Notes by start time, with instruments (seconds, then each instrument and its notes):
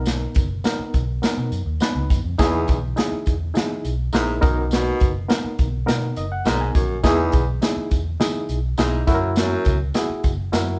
Already playing: fingered electric bass B1, reed electric piano B2 B3 D#4 A#4
0.06 snare, closed hi-hat, tambourine
0.34 fingered electric bass F#1, kick, closed hi-hat, tambourine
0.64 reed electric piano B3 D#4 A#4, snare, closed hi-hat, tambourine
0.79 muted fingered electric bass stroke
0.94 fingered electric bass B1, kick, closed hi-hat, tambourine
1.22 reed electric piano B3 D#4 A#4, snare, closed hi-hat, tambourine
1.37 fingered electric bass B2
1.51 fingered electric bass F#2, closed hi-hat, tambourine
1.66 fingered electric bass D#2
1.80 reed electric piano B3 D#4 B4, snare, closed hi-hat, tambourine
1.95 fingered electric bass C#2
2.10 fingered electric bass F#2, kick, closed hi-hat, tambourine
2.24 fingered electric bass F2
2.39 baritone saxophone E2, fingered electric bass E2, reed electric piano E3 D#4 E4 G#4, kick, snare, closed hi-hat, tambourine
2.68 fingered electric bass B1, kick, closed hi-hat, tambourine
2.96 reed electric piano D#4 E4 G#4, snare, closed hi-hat, tambourine
3.12 muted fingered electric bass stroke
3.26 fingered electric bass E2, kick, closed hi-hat, tambourine
3.54 fingered electric bass E3, reed electric piano D#4 E4 G#4, snare, closed hi-hat, tambourine
3.85 fingered electric bass B1, closed hi-hat, tambourine
4.13 fingered electric bass A#1, baritone saxophone G#2, reed electric piano D#4 E4 A#4, snare, closed hi-hat, tambourine
4.41 fingered electric bass B1, baritone saxophone F#2, reed electric piano B2 B3 D#4 A#4, kick, closed hi-hat, tambourine
4.71 baritone saxophone B2, snare, closed hi-hat, tambourine
5.00 fingered electric bass F#1, kick, closed hi-hat, tambourine
5.28 reed electric piano B3 D#4 A#4, snare, closed hi-hat, tambourine
5.44 muted fingered electric bass stroke
5.59 fingered electric bass B1, kick, closed hi-hat, tambourine
5.86 fingered electric bass B2, reed electric piano B3 D#4 A#4, snare, closed hi-hat, tambourine
6.16 fingered electric bass F#1, reed electric piano D#5, closed hi-hat, tambourine
6.32 reed electric piano F#5
6.45 fingered electric bass B1, baritone saxophone G#2, reed electric piano B3 D#4 A#4 A#5, snare, closed hi-hat, tambourine
6.61 reed electric piano G#5
6.75 fingered electric bass A#1, baritone saxophone F#2, kick, closed hi-hat, tambourine
7.03 fingered electric bass E2, baritone saxophone E2, reed electric piano E3 D#4 E4 G#4, kick, snare, closed hi-hat, tambourine
7.32 fingered electric bass B1, kick, closed hi-hat, tambourine
7.62 reed electric piano D#4 E4 G#4, snare, closed hi-hat, tambourine
7.77 muted fingered electric bass stroke
7.91 fingered electric bass E2, kick, closed hi-hat, tambourine
8.20 fingered electric bass E3, reed electric piano D#4 E4 G#4, snare, closed hi-hat, tambourine
8.49 fingered electric bass B1, closed hi-hat, tambourine
8.78 fingered electric bass B1, baritone saxophone G#2, reed electric piano D#4 E4 G#4, snare, closed hi-hat, tambourine
9.07 fingered electric bass F#2, baritone saxophone F#2, reed electric piano E4 F#4 A4, kick, snare, closed hi-hat, tambourine
9.14 reed electric piano A#4
9.36 baritone saxophone F#2, snare, closed hi-hat, tambourine
9.65 fingered electric bass C#2, kick, closed hi-hat, tambourine
9.94 reed electric piano E4 F#4 G#4, snare, closed hi-hat, tambourine
10.09 muted fingered electric bass stroke
10.24 fingered electric bass F#1, kick, closed hi-hat, tambourine
10.52 fingered electric bass F#2, reed electric piano E4 F#4 A#4, snare, closed hi-hat, tambourine